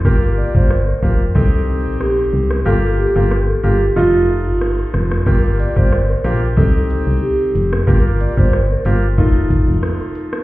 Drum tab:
CC |----------------|----------------|x---------------|----------------|
HH |----------------|----------------|--x---x---x---x-|--x---x---x---x-|
SH |----------------|----------------|xxxxxxxxxxxxxxxx|xxxxxxxxxxxxxxxx|
SD |----r-------r--r|----r-------r-rr|----r----------r|----r-------r--r|
BD |o--o--o-o-------|----------------|o--o----o-------|o--o----o-o-----|